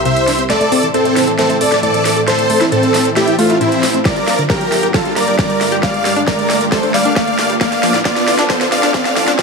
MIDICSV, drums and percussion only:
0, 0, Header, 1, 2, 480
1, 0, Start_track
1, 0, Tempo, 444444
1, 539, Time_signature, 4, 2, 24, 8
1, 10179, End_track
2, 0, Start_track
2, 0, Title_t, "Drums"
2, 58, Note_on_c, 9, 42, 64
2, 166, Note_off_c, 9, 42, 0
2, 178, Note_on_c, 9, 42, 64
2, 286, Note_off_c, 9, 42, 0
2, 298, Note_on_c, 9, 38, 57
2, 298, Note_on_c, 9, 46, 91
2, 406, Note_off_c, 9, 38, 0
2, 406, Note_off_c, 9, 46, 0
2, 418, Note_on_c, 9, 42, 61
2, 526, Note_off_c, 9, 42, 0
2, 538, Note_on_c, 9, 38, 58
2, 538, Note_on_c, 9, 42, 63
2, 646, Note_off_c, 9, 38, 0
2, 646, Note_off_c, 9, 42, 0
2, 658, Note_on_c, 9, 42, 61
2, 766, Note_off_c, 9, 42, 0
2, 778, Note_on_c, 9, 46, 110
2, 886, Note_off_c, 9, 46, 0
2, 898, Note_on_c, 9, 42, 64
2, 1006, Note_off_c, 9, 42, 0
2, 1018, Note_on_c, 9, 42, 62
2, 1126, Note_off_c, 9, 42, 0
2, 1138, Note_on_c, 9, 42, 62
2, 1246, Note_off_c, 9, 42, 0
2, 1258, Note_on_c, 9, 38, 60
2, 1258, Note_on_c, 9, 46, 92
2, 1366, Note_off_c, 9, 38, 0
2, 1366, Note_off_c, 9, 46, 0
2, 1378, Note_on_c, 9, 42, 63
2, 1486, Note_off_c, 9, 42, 0
2, 1498, Note_on_c, 9, 38, 63
2, 1498, Note_on_c, 9, 42, 62
2, 1606, Note_off_c, 9, 38, 0
2, 1606, Note_off_c, 9, 42, 0
2, 1618, Note_on_c, 9, 42, 61
2, 1726, Note_off_c, 9, 42, 0
2, 1738, Note_on_c, 9, 46, 108
2, 1846, Note_off_c, 9, 46, 0
2, 1858, Note_on_c, 9, 38, 54
2, 1858, Note_on_c, 9, 42, 60
2, 1966, Note_off_c, 9, 38, 0
2, 1966, Note_off_c, 9, 42, 0
2, 1978, Note_on_c, 9, 42, 60
2, 2086, Note_off_c, 9, 42, 0
2, 2098, Note_on_c, 9, 42, 63
2, 2206, Note_off_c, 9, 42, 0
2, 2218, Note_on_c, 9, 38, 63
2, 2218, Note_on_c, 9, 46, 94
2, 2326, Note_off_c, 9, 38, 0
2, 2326, Note_off_c, 9, 46, 0
2, 2338, Note_on_c, 9, 42, 61
2, 2446, Note_off_c, 9, 42, 0
2, 2458, Note_on_c, 9, 38, 66
2, 2458, Note_on_c, 9, 42, 62
2, 2566, Note_off_c, 9, 38, 0
2, 2566, Note_off_c, 9, 42, 0
2, 2578, Note_on_c, 9, 42, 58
2, 2686, Note_off_c, 9, 42, 0
2, 2698, Note_on_c, 9, 46, 103
2, 2806, Note_off_c, 9, 46, 0
2, 2818, Note_on_c, 9, 38, 58
2, 2818, Note_on_c, 9, 42, 61
2, 2926, Note_off_c, 9, 38, 0
2, 2926, Note_off_c, 9, 42, 0
2, 2938, Note_on_c, 9, 42, 61
2, 3046, Note_off_c, 9, 42, 0
2, 3058, Note_on_c, 9, 42, 61
2, 3166, Note_off_c, 9, 42, 0
2, 3178, Note_on_c, 9, 38, 68
2, 3178, Note_on_c, 9, 46, 94
2, 3286, Note_off_c, 9, 38, 0
2, 3286, Note_off_c, 9, 46, 0
2, 3298, Note_on_c, 9, 42, 64
2, 3406, Note_off_c, 9, 42, 0
2, 3418, Note_on_c, 9, 38, 70
2, 3418, Note_on_c, 9, 42, 61
2, 3526, Note_off_c, 9, 38, 0
2, 3526, Note_off_c, 9, 42, 0
2, 3538, Note_on_c, 9, 42, 60
2, 3646, Note_off_c, 9, 42, 0
2, 3658, Note_on_c, 9, 46, 105
2, 3766, Note_off_c, 9, 46, 0
2, 3778, Note_on_c, 9, 42, 61
2, 3886, Note_off_c, 9, 42, 0
2, 3898, Note_on_c, 9, 42, 57
2, 4006, Note_off_c, 9, 42, 0
2, 4018, Note_on_c, 9, 42, 61
2, 4126, Note_off_c, 9, 42, 0
2, 4138, Note_on_c, 9, 38, 69
2, 4138, Note_on_c, 9, 46, 94
2, 4246, Note_off_c, 9, 38, 0
2, 4246, Note_off_c, 9, 46, 0
2, 4258, Note_on_c, 9, 42, 61
2, 4366, Note_off_c, 9, 42, 0
2, 4378, Note_on_c, 9, 36, 115
2, 4378, Note_on_c, 9, 38, 72
2, 4378, Note_on_c, 9, 42, 61
2, 4486, Note_off_c, 9, 36, 0
2, 4486, Note_off_c, 9, 38, 0
2, 4486, Note_off_c, 9, 42, 0
2, 4498, Note_on_c, 9, 42, 59
2, 4498, Note_on_c, 9, 63, 76
2, 4606, Note_off_c, 9, 42, 0
2, 4606, Note_off_c, 9, 63, 0
2, 4618, Note_on_c, 9, 38, 74
2, 4618, Note_on_c, 9, 46, 106
2, 4726, Note_off_c, 9, 38, 0
2, 4726, Note_off_c, 9, 46, 0
2, 4738, Note_on_c, 9, 42, 61
2, 4846, Note_off_c, 9, 42, 0
2, 4858, Note_on_c, 9, 36, 115
2, 4858, Note_on_c, 9, 38, 73
2, 4858, Note_on_c, 9, 42, 60
2, 4966, Note_off_c, 9, 36, 0
2, 4966, Note_off_c, 9, 38, 0
2, 4966, Note_off_c, 9, 42, 0
2, 4978, Note_on_c, 9, 42, 65
2, 5086, Note_off_c, 9, 42, 0
2, 5098, Note_on_c, 9, 38, 78
2, 5098, Note_on_c, 9, 46, 93
2, 5206, Note_off_c, 9, 38, 0
2, 5206, Note_off_c, 9, 46, 0
2, 5218, Note_on_c, 9, 42, 65
2, 5326, Note_off_c, 9, 42, 0
2, 5338, Note_on_c, 9, 36, 110
2, 5338, Note_on_c, 9, 38, 79
2, 5338, Note_on_c, 9, 42, 61
2, 5446, Note_off_c, 9, 36, 0
2, 5446, Note_off_c, 9, 38, 0
2, 5446, Note_off_c, 9, 42, 0
2, 5458, Note_on_c, 9, 42, 62
2, 5566, Note_off_c, 9, 42, 0
2, 5577, Note_on_c, 9, 38, 74
2, 5577, Note_on_c, 9, 46, 99
2, 5685, Note_off_c, 9, 38, 0
2, 5685, Note_off_c, 9, 46, 0
2, 5698, Note_on_c, 9, 42, 61
2, 5806, Note_off_c, 9, 42, 0
2, 5818, Note_on_c, 9, 36, 122
2, 5818, Note_on_c, 9, 38, 75
2, 5818, Note_on_c, 9, 42, 59
2, 5926, Note_off_c, 9, 36, 0
2, 5926, Note_off_c, 9, 38, 0
2, 5926, Note_off_c, 9, 42, 0
2, 5938, Note_on_c, 9, 42, 62
2, 6046, Note_off_c, 9, 42, 0
2, 6058, Note_on_c, 9, 38, 78
2, 6058, Note_on_c, 9, 46, 90
2, 6166, Note_off_c, 9, 38, 0
2, 6166, Note_off_c, 9, 46, 0
2, 6178, Note_on_c, 9, 42, 62
2, 6286, Note_off_c, 9, 42, 0
2, 6297, Note_on_c, 9, 38, 85
2, 6297, Note_on_c, 9, 42, 67
2, 6298, Note_on_c, 9, 36, 123
2, 6405, Note_off_c, 9, 38, 0
2, 6405, Note_off_c, 9, 42, 0
2, 6406, Note_off_c, 9, 36, 0
2, 6418, Note_on_c, 9, 42, 59
2, 6418, Note_on_c, 9, 63, 78
2, 6526, Note_off_c, 9, 42, 0
2, 6526, Note_off_c, 9, 63, 0
2, 6537, Note_on_c, 9, 38, 81
2, 6537, Note_on_c, 9, 46, 102
2, 6645, Note_off_c, 9, 38, 0
2, 6645, Note_off_c, 9, 46, 0
2, 6658, Note_on_c, 9, 42, 64
2, 6766, Note_off_c, 9, 42, 0
2, 6778, Note_on_c, 9, 36, 114
2, 6778, Note_on_c, 9, 38, 83
2, 6778, Note_on_c, 9, 42, 62
2, 6886, Note_off_c, 9, 36, 0
2, 6886, Note_off_c, 9, 38, 0
2, 6886, Note_off_c, 9, 42, 0
2, 6898, Note_on_c, 9, 42, 66
2, 7006, Note_off_c, 9, 42, 0
2, 7018, Note_on_c, 9, 38, 83
2, 7018, Note_on_c, 9, 46, 86
2, 7126, Note_off_c, 9, 38, 0
2, 7126, Note_off_c, 9, 46, 0
2, 7138, Note_on_c, 9, 42, 70
2, 7246, Note_off_c, 9, 42, 0
2, 7258, Note_on_c, 9, 36, 101
2, 7258, Note_on_c, 9, 38, 84
2, 7258, Note_on_c, 9, 42, 67
2, 7366, Note_off_c, 9, 36, 0
2, 7366, Note_off_c, 9, 38, 0
2, 7366, Note_off_c, 9, 42, 0
2, 7378, Note_on_c, 9, 42, 66
2, 7486, Note_off_c, 9, 42, 0
2, 7497, Note_on_c, 9, 38, 83
2, 7497, Note_on_c, 9, 46, 96
2, 7497, Note_on_c, 9, 63, 82
2, 7605, Note_off_c, 9, 38, 0
2, 7605, Note_off_c, 9, 46, 0
2, 7605, Note_off_c, 9, 63, 0
2, 7618, Note_on_c, 9, 42, 65
2, 7726, Note_off_c, 9, 42, 0
2, 7738, Note_on_c, 9, 36, 115
2, 7738, Note_on_c, 9, 38, 91
2, 7738, Note_on_c, 9, 42, 66
2, 7846, Note_off_c, 9, 36, 0
2, 7846, Note_off_c, 9, 38, 0
2, 7846, Note_off_c, 9, 42, 0
2, 7858, Note_on_c, 9, 42, 70
2, 7966, Note_off_c, 9, 42, 0
2, 7978, Note_on_c, 9, 38, 92
2, 7978, Note_on_c, 9, 46, 87
2, 7978, Note_on_c, 9, 63, 65
2, 8086, Note_off_c, 9, 38, 0
2, 8086, Note_off_c, 9, 46, 0
2, 8086, Note_off_c, 9, 63, 0
2, 8098, Note_on_c, 9, 42, 66
2, 8206, Note_off_c, 9, 42, 0
2, 8218, Note_on_c, 9, 36, 123
2, 8218, Note_on_c, 9, 38, 91
2, 8218, Note_on_c, 9, 42, 67
2, 8326, Note_off_c, 9, 36, 0
2, 8326, Note_off_c, 9, 38, 0
2, 8326, Note_off_c, 9, 42, 0
2, 8338, Note_on_c, 9, 38, 75
2, 8338, Note_on_c, 9, 42, 66
2, 8338, Note_on_c, 9, 63, 76
2, 8446, Note_off_c, 9, 38, 0
2, 8446, Note_off_c, 9, 42, 0
2, 8446, Note_off_c, 9, 63, 0
2, 8458, Note_on_c, 9, 38, 93
2, 8458, Note_on_c, 9, 46, 103
2, 8566, Note_off_c, 9, 38, 0
2, 8566, Note_off_c, 9, 46, 0
2, 8578, Note_on_c, 9, 38, 82
2, 8578, Note_on_c, 9, 42, 68
2, 8686, Note_off_c, 9, 38, 0
2, 8686, Note_off_c, 9, 42, 0
2, 8698, Note_on_c, 9, 36, 115
2, 8698, Note_on_c, 9, 38, 94
2, 8698, Note_on_c, 9, 42, 69
2, 8806, Note_off_c, 9, 36, 0
2, 8806, Note_off_c, 9, 38, 0
2, 8806, Note_off_c, 9, 42, 0
2, 8818, Note_on_c, 9, 38, 82
2, 8818, Note_on_c, 9, 42, 72
2, 8926, Note_off_c, 9, 38, 0
2, 8926, Note_off_c, 9, 42, 0
2, 8938, Note_on_c, 9, 38, 92
2, 8938, Note_on_c, 9, 46, 90
2, 9046, Note_off_c, 9, 38, 0
2, 9046, Note_off_c, 9, 46, 0
2, 9058, Note_on_c, 9, 38, 86
2, 9058, Note_on_c, 9, 42, 70
2, 9166, Note_off_c, 9, 38, 0
2, 9166, Note_off_c, 9, 42, 0
2, 9178, Note_on_c, 9, 36, 105
2, 9178, Note_on_c, 9, 38, 93
2, 9178, Note_on_c, 9, 42, 66
2, 9286, Note_off_c, 9, 36, 0
2, 9286, Note_off_c, 9, 38, 0
2, 9286, Note_off_c, 9, 42, 0
2, 9298, Note_on_c, 9, 38, 90
2, 9298, Note_on_c, 9, 42, 72
2, 9406, Note_off_c, 9, 38, 0
2, 9406, Note_off_c, 9, 42, 0
2, 9418, Note_on_c, 9, 38, 94
2, 9418, Note_on_c, 9, 46, 100
2, 9526, Note_off_c, 9, 38, 0
2, 9526, Note_off_c, 9, 46, 0
2, 9538, Note_on_c, 9, 38, 91
2, 9538, Note_on_c, 9, 42, 70
2, 9646, Note_off_c, 9, 38, 0
2, 9646, Note_off_c, 9, 42, 0
2, 9658, Note_on_c, 9, 36, 118
2, 9658, Note_on_c, 9, 38, 101
2, 9658, Note_on_c, 9, 42, 66
2, 9766, Note_off_c, 9, 36, 0
2, 9766, Note_off_c, 9, 38, 0
2, 9766, Note_off_c, 9, 42, 0
2, 9778, Note_on_c, 9, 38, 92
2, 9778, Note_on_c, 9, 42, 68
2, 9886, Note_off_c, 9, 38, 0
2, 9886, Note_off_c, 9, 42, 0
2, 9898, Note_on_c, 9, 38, 102
2, 9898, Note_on_c, 9, 46, 86
2, 10006, Note_off_c, 9, 38, 0
2, 10006, Note_off_c, 9, 46, 0
2, 10019, Note_on_c, 9, 38, 89
2, 10019, Note_on_c, 9, 42, 70
2, 10127, Note_off_c, 9, 38, 0
2, 10127, Note_off_c, 9, 42, 0
2, 10138, Note_on_c, 9, 36, 117
2, 10139, Note_on_c, 9, 38, 106
2, 10139, Note_on_c, 9, 42, 71
2, 10179, Note_off_c, 9, 36, 0
2, 10179, Note_off_c, 9, 38, 0
2, 10179, Note_off_c, 9, 42, 0
2, 10179, End_track
0, 0, End_of_file